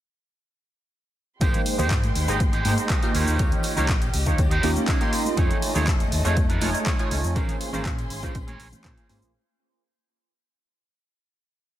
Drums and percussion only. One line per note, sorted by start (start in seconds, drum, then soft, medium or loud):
1.41 kick loud
1.41 closed hi-hat medium
1.41 tambourine medium
1.41 cabasa medium
1.54 closed hi-hat medium
1.54 tambourine soft
1.54 low conga medium
1.54 cabasa soft
1.66 open hi-hat loud
1.66 tambourine medium
1.79 tambourine soft
1.79 low conga medium
1.79 cabasa medium
1.90 kick loud
1.90 clap loud
1.90 closed hi-hat medium
1.90 tambourine medium
1.90 cabasa medium
2.03 closed hi-hat medium
2.03 tambourine soft
2.03 high conga medium
2.03 cabasa soft
2.15 open hi-hat medium
2.15 tambourine medium
2.28 closed hi-hat soft
2.28 tambourine soft
2.28 cabasa medium
2.40 kick loud
2.40 closed hi-hat medium
2.40 tambourine medium
2.40 high conga medium
2.40 cabasa medium
2.53 closed hi-hat medium
2.53 cabasa soft
2.65 open hi-hat loud
2.65 tambourine loud
2.65 high conga medium
2.78 closed hi-hat soft
2.78 tambourine soft
2.78 cabasa medium
2.90 kick loud
2.90 clap loud
2.90 closed hi-hat medium
2.90 tambourine medium
2.90 cabasa medium
3.03 closed hi-hat medium
3.03 tambourine soft
3.03 cabasa soft
3.15 open hi-hat medium
3.15 tambourine medium
3.27 tambourine soft
3.27 cabasa medium
3.39 kick loud
3.39 closed hi-hat medium
3.39 tambourine medium
3.39 cabasa medium
3.51 closed hi-hat medium
3.51 tambourine soft
3.51 low conga medium
3.51 cabasa soft
3.63 open hi-hat loud
3.63 tambourine medium
3.76 tambourine soft
3.76 low conga medium
3.76 cabasa medium
3.89 kick loud
3.89 clap loud
3.89 closed hi-hat medium
3.89 tambourine medium
3.89 cabasa medium
4.01 closed hi-hat medium
4.01 tambourine soft
4.01 cabasa soft
4.14 open hi-hat loud
4.14 tambourine loud
4.26 kick medium
4.26 closed hi-hat soft
4.26 cabasa medium
4.38 kick loud
4.38 closed hi-hat medium
4.38 tambourine soft
4.38 cabasa medium
4.51 closed hi-hat medium
4.51 cabasa soft
4.63 open hi-hat loud
4.63 tambourine medium
4.76 closed hi-hat soft
4.76 tambourine soft
4.76 high conga loud
4.76 cabasa medium
4.88 kick loud
4.88 clap loud
4.88 closed hi-hat medium
4.88 tambourine medium
4.88 cabasa medium
5.01 closed hi-hat medium
5.01 tambourine soft
5.01 cabasa soft
5.13 open hi-hat loud
5.13 tambourine loud
5.25 tambourine soft
5.25 high conga medium
5.25 cabasa medium
5.37 kick loud
5.37 closed hi-hat medium
5.37 tambourine medium
5.37 cabasa medium
5.50 closed hi-hat medium
5.50 tambourine soft
5.50 low conga medium
5.50 cabasa soft
5.62 open hi-hat loud
5.62 tambourine medium
5.75 tambourine soft
5.75 low conga medium
5.75 cabasa medium
5.87 kick loud
5.87 clap loud
5.87 closed hi-hat medium
5.87 tambourine medium
5.87 cabasa medium
5.99 closed hi-hat medium
5.99 tambourine soft
5.99 high conga medium
5.99 cabasa soft
6.12 open hi-hat loud
6.12 tambourine medium
6.24 closed hi-hat soft
6.24 tambourine soft
6.24 cabasa medium
6.37 kick loud
6.37 closed hi-hat medium
6.37 tambourine medium
6.37 high conga medium
6.37 cabasa medium
6.50 closed hi-hat medium
6.50 cabasa soft
6.61 open hi-hat loud
6.61 tambourine medium
6.61 high conga medium
6.74 closed hi-hat soft
6.74 tambourine soft
6.74 cabasa medium
6.86 kick loud
6.86 clap loud
6.86 closed hi-hat medium
6.86 tambourine medium
6.86 cabasa medium
6.98 closed hi-hat medium
6.98 tambourine soft
6.98 cabasa soft
7.11 open hi-hat loud
7.11 tambourine medium
7.24 tambourine soft
7.24 cabasa medium
7.36 kick loud
7.36 closed hi-hat medium
7.36 tambourine medium
7.36 cabasa medium
7.48 closed hi-hat medium
7.48 tambourine soft
7.48 low conga medium
7.48 cabasa soft
7.61 open hi-hat loud
7.61 tambourine loud
7.73 tambourine soft
7.73 low conga medium
7.73 cabasa medium
7.86 kick loud
7.86 clap loud
7.86 closed hi-hat medium
7.86 tambourine medium
7.86 cabasa medium
7.98 closed hi-hat medium
7.98 tambourine soft
7.98 cabasa soft
8.10 open hi-hat loud
8.10 tambourine medium
8.23 kick medium
8.23 closed hi-hat soft
8.23 tambourine soft
8.23 cabasa medium
8.35 kick loud
8.35 closed hi-hat medium
8.35 tambourine soft
8.35 cabasa medium
8.47 closed hi-hat soft
8.47 high conga medium
8.47 cabasa soft
8.60 open hi-hat loud
8.60 tambourine medium
8.72 closed hi-hat soft
8.72 tambourine soft
8.72 high conga medium
8.72 low conga medium
8.72 cabasa medium
8.84 kick loud
8.84 clap loud
8.84 closed hi-hat medium
8.84 cabasa medium
8.97 closed hi-hat medium
8.97 tambourine soft
8.97 cabasa soft
9.09 open hi-hat loud
9.09 tambourine medium
9.22 tambourine soft
9.22 high conga medium
9.22 cabasa medium